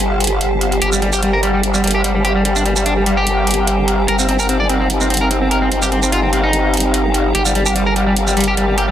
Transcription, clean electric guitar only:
0.82 G4
0.93 G3
1.02 G3
1.13 G4
1.23 G3
1.33 A#4
1.43 G3
1.54 G3
1.74 G3
1.84 G3
1.95 G4
2.04 G3
2.15 G3
2.25 G4
2.36 G3
2.45 G3
2.56 D4
2.66 G3
2.76 G3
2.86 D4
2.97 G3
3.06 G3
3.17 G4
4.08 A#4
4.19 C4
4.29 C4
4.40 A#4
4.49 C4
4.60 D5
4.70 C4
4.80 C4
5.01 C4
5.10 C4
5.21 A#4
5.31 C4
5.41 C4
5.51 A#4
5.62 C4
5.72 C4
5.82 G4
5.92 C4
6.03 C4
6.12 F4
6.23 C4
6.33 C4
6.43 D#4
7.35 G4
7.46 G3
7.55 G3
7.66 G4
7.76 G3
7.87 A#4
7.96 G3
8.07 G3
8.27 G3
8.37 G3
8.48 G4
8.57 G3
8.68 G3
8.78 G4

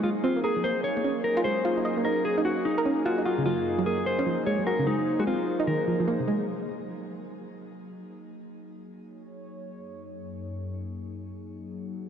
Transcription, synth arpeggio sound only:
0.04 G#3
0.24 C4
0.36 A#3
0.44 A#4
0.56 F3
0.64 A#3
0.97 A#3
1.04 C#4
1.37 F4
1.45 G#3
1.65 F4
1.77 D#4
1.85 D#5
1.97 A#3
2.05 D#4
2.38 D#4
2.45 F#4
2.78 A#4
2.85 C#4
3.06 F4
3.18 D#4
3.26 F#4
3.38 C#3
3.46 F#3
3.78 F#3
3.86 A#3
4.19 C#4
4.26 F3
4.47 G#3
4.59 F#3
4.67 F#4
4.79 C#3
4.87 G#3
5.19 G#3
5.27 C4
5.60 D#4
5.67 D#3
5.88 F3
6.00 F3
6.08 A#3
6.20 C3
6.28 G#3

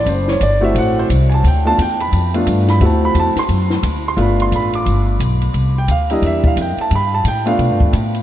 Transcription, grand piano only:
0.09 C5
0.29 C#5
0.43 D5
0.61 A3 C4 E4 F#4 E5
0.78 F#5
0.99 C5
1.34 A5
1.48 G5
1.65 A3 B3 D4 F4 A5
1.82 G5
2.01 B5
2.34 A3 B3 D4 F4
2.70 B5
2.81 A3 C4 E4 F#4
2.85 A5
3.05 B5
3.20 A5
3.39 C6
4.08 C6
4.17 A3 B3 D4 F4
4.22 B5
4.42 C6
4.56 B5
4.75 D6
5.78 G5
5.91 F5
6.10 G3 A#3 D4 E4 D#5
6.26 E5
6.47 F5
6.61 G5
6.81 A5
6.95 B5
7.14 A5
7.28 G5
7.46 A3 B3 D4 F4 F5

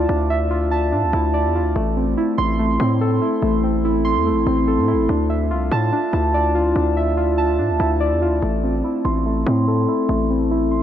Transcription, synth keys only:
Already playing: E4 F4 D5 A5
0.09 D4
0.30 E5
0.51 F4
0.71 A5
0.92 D4
1.14 E4
1.34 D5
1.55 F4
1.75 A3
1.97 C4
2.17 E4
2.38 C6
2.59 A3
2.80 C4
3.01 A4
3.22 E4
3.42 A3
3.64 C4
3.85 E4
4.05 C6
4.26 A3
4.46 C4
4.67 A4
4.88 E4
5.09 D4
5.30 E5
5.51 F4
5.72 A5
5.93 D4
6.13 E4
6.34 D5
6.55 F4
6.75 D4
6.97 E5
7.17 F4
7.38 A5
7.59 D4
7.80 E4
8.00 D5
8.22 F4
8.42 A3
8.63 C4
8.84 E4
9.04 C6
9.26 A3
9.47 C4
9.68 A4
9.88 E4
10.09 A3
10.30 C4
10.51 E4
10.71 C6

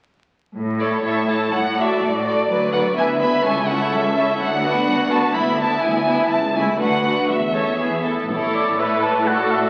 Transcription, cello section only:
0.56 A2
1.04 A2
1.53 A2
2.02 A2
2.50 D2
2.98 D2
3.45 C#2
3.93 C#2
4.41 D2
4.87 D2
5.35 D2
5.83 D2
6.31 C#2
6.80 D2
7.31 E2
7.80 E2
8.30 A2

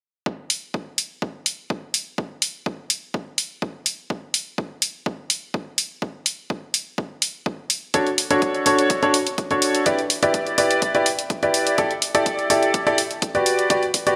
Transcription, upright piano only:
7.94 D4 F#4 A4 C#5
8.31 D4 F#4 A4 C#5
8.66 D4 F#4 A4 C#5
9.03 D4 F#4 A4 C#5
9.51 D4 F#4 A4 C#5
9.86 E4 G4 B4 D5
10.23 E4 G4 B4 D5
10.58 E4 G4 B4 D5
10.95 E4 G4 B4 D5
11.43 E4 G4 B4 D5
11.78 E4 G4 A4 D5
12.15 E4 G4 A4 D5
12.50 E4 G4 A4 D5
12.87 E4 G4 A4 D5
13.35 F#4 G4 B4 D5
13.70 F#4 G4 B4 D5
14.07 F#4 G4 B4 D5

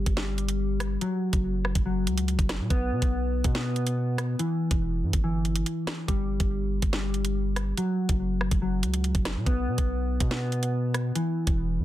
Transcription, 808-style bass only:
0.06 G1
1.33 F#1
1.75 F#1
2.07 C#2
2.39 F#1
2.60 A#2
2.70 B1
2.92 B2
3.02 B1
3.44 B2
4.71 E1
5.03 G2
5.13 G1
6.08 G1
6.40 G1
6.82 G1
8.09 F#1
8.51 F#1
8.83 C#2
9.15 F#1
9.36 A#2
9.46 B1
9.68 B2
9.78 B1
10.21 B2
11.47 E1
11.79 G2

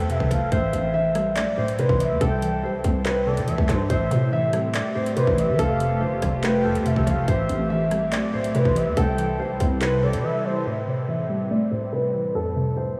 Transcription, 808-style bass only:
0.00 F2
0.20 F1
0.31 F1
0.52 A1
0.73 A1
1.36 B1
1.89 A1
2.10 E2
2.21 C2
2.63 B1
2.74 C2
2.84 C2
3.37 C3
3.48 C2
3.58 C2
3.69 G2
3.90 A1
4.11 A2
5.27 A1
5.48 E3
5.59 F1
6.01 G1
6.12 F1
6.22 F1
6.75 F2
6.96 F1
7.07 F1
7.28 A1
7.49 A1
8.13 B1
8.65 A1
8.86 E2
8.97 C2
9.39 B1
9.50 C2
9.61 C2
10.13 C3

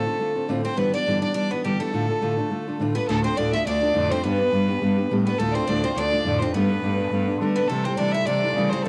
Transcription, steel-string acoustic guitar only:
0.06 D3 A3 C4 F4
0.19 D3 A3 C4 F4
0.35 D3 A3 C4 F4
0.48 D2 A2 D3 A3 C4 F4
0.63 D3 A3 C4 F4
0.76 G2 D3 E3 G3 B3 D4
0.92 E3 G3 B3 D4
1.06 G2 D3 E3 G3 B3 D4
1.21 E3 G3 B3 D4
1.34 E3 G3 B3 D4
1.50 E3 G3 B3 D4
1.64 G2 D3 E3 G3 B3 D4
1.79 E3 G3 B3 D4
1.93 D2 A2 D3 A3 D4 F4
2.09 D3 A3 D4 F4
2.21 D2 A2 D3 A3 D4 F4
2.37 D3 A3 D4 F4
2.50 D3 A3 D4 F4
2.67 D3 A3 D4 F4
2.80 D2 A2 D3 A3 D4 F4
2.95 D3 A3 D4 F4
3.09 D2 A2 D3 A3 D4 F4
3.24 D3 A3 D4 F4
3.37 D2 A2 D3 A3 D4 F4
3.53 D3 A3 D4 F4
3.65 D3 A3 D4 F4
3.81 D3 A3 D4 F4
3.94 D2 A2 D3 A3 D4 F4
4.11 D3 A3 D4 F4
4.24 G3 B3 D4 G4
4.39 B3 D4 G4
4.52 G3 B3 D4 G4
4.68 B3 D4 G4
4.81 G3 B3 D4 G4
4.97 B3 D4 G4
5.11 G3 B3 D4 G4
5.26 B3 D4 G4
5.39 D2 A2 D3 A3 D4 F4
5.55 D3 A3 D4 F4
5.68 D2 A2 D3 A3 D4 F4
5.84 D3 A3 D4 F4
5.96 D3 A3 D4 F4
6.12 D3 A3 D4 F4
6.25 D2 A2 D3 A3 D4 F4
6.41 D3 A3 D4 F4
6.55 G3 A3 B3 D4
6.70 A3 B3 D4
6.83 G3 A3 B3 D4
6.99 A3 B3 D4
7.12 G3 A3 B3 D4
7.28 A3 B3 D4
7.41 G3 A3 B3 D4
7.58 A3 B3 D4
7.71 C3 E3 G3 A3 E4
7.86 G3 A3 E4
7.99 C3 E3 G3 A3 E4
8.15 G3 A3 E4
8.29 E3 G3 A3 E4
8.44 G3 A3 E4
8.56 C3 E3 G3 A3 E4
8.73 G3 A3 E4
8.85 D2 A2 F3 A3

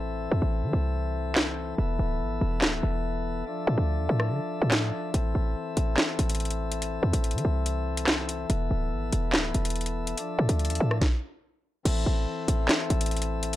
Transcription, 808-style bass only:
Already playing: A1
0.32 E2
0.42 A1
0.63 E3
0.73 C2
1.78 E1
1.99 D1
2.20 G#1
2.41 E1
2.62 D1
2.83 E1
3.67 A2
3.78 D2
3.99 E2
4.09 A2
4.30 D3
4.62 A2
5.14 A1
5.35 A1
5.77 A1
6.19 A1
7.03 E2
7.13 A1
7.34 E3
7.45 C2
8.50 E1
8.71 D1
8.92 G#1
9.13 E1
9.34 D1
9.55 E1
10.39 A2
10.49 D2
10.70 E2
10.80 A2
11.85 A1
12.06 A1
12.48 A1
12.90 A1

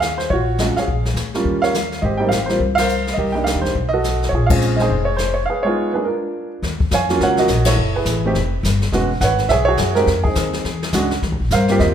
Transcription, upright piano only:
Already playing: G#4 C#5
0.00 F5
0.18 C5
0.30 F4 F#4 C#5
0.60 F#3 G#3 C#4 F4 D#5
0.77 G#4 C#5 F5
1.35 G3 A#3 C#4 F4
1.62 A#4 C#5 F5
2.02 G4 C5 D#5
2.17 G3 A#3 C4 G5
2.22 D#4
2.29 F5
2.46 G3 A#3 C5
2.51 C4 F4
2.75 F5
2.79 A#4 C5
3.14 D#5
3.18 G4 A#4
3.32 G3 A#3 D4 G5
3.36 D#4
3.44 F5
3.61 C5
3.89 D#5
3.93 F#4 A4
4.29 C#5
4.34 F4 G#4
4.46 G#3 C4 F4 F5
4.50 C#4 G#4 C#5
4.76 G#3 C4 C#4 D#4 D#5
4.81 G#4 C5
5.05 C#5
5.17 C5
5.34 C#5
5.46 F5
5.50 G#4 B4
5.63 G#3 B3 D#4 F4 G#4 C#5
5.93 G#3 A#3 D4 G#4 B4
6.04 D4 F4 A#4
6.93 C#5 F5 G#5
7.10 F#3 A#3 C#4 F4
7.23 A#4 C#5 F#5
7.39 F#4 A#4 D#5
7.66 E4 A4 C#5
7.96 E4 G#4 B4
8.25 A3 C4 D#4 G4
8.92 G#3 B3 C#4 F#4
9.21 B4 C#5 F#5
9.49 G#4 C#5 E5
9.65 F#4 G#4 C#5
9.95 G#3 C4 D#4 G4 A#4
10.24 D#4 G#4
10.28 C4
10.93 G#3 C#4 D4 F#4
11.52 A#4 C5 F5
11.70 A#3 C4 F4 G4
11.80 G4 C5 D#5

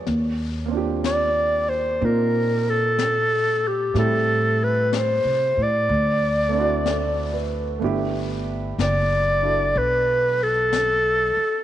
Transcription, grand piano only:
Already playing: C#5
0.66 A#3 C4
0.71 D4 F4
0.77 G4
2.01 C4 D#4 F4
3.94 G3 A3 C4 E4
3.99 G4
6.49 A3 C4
6.54 D4 E4
6.60 F#4
6.86 A4
7.33 B4
7.79 A3 B3 D4
7.83 E4 G4
9.42 D4 E4 F#4 A4

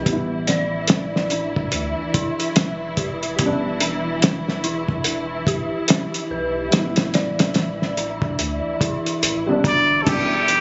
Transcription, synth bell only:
0.47 D5
1.32 D4
2.14 E4
2.98 G4
3.81 D4
4.64 E4
5.48 G4
6.31 B4
7.14 D5
7.98 D4
8.81 E4
9.64 D4
10.06 D4

